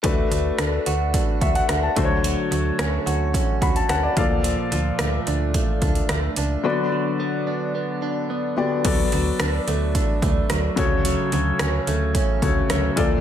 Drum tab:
CC |----------------|----------------|----------------|----------------|
HH |x-x-x-x-x-xxx-x-|x-x-x-x-x-xxx-x-|x-x-x-x-x-xxx-x-|----------------|
SD |----r-------r---|----r-------r---|----r-------r---|----------------|
BD |o-------o-o---o-|--------o-o---o-|--------o-o-----|----------------|

CC |x---------------|----------------|
HH |x-x-x-x-x-x-x-x-|x-x-x-x-x-x-x-x-|
SD |----r-------r---|----r-------r---|
BD |o-------o-o---o-|--------o-o---o-|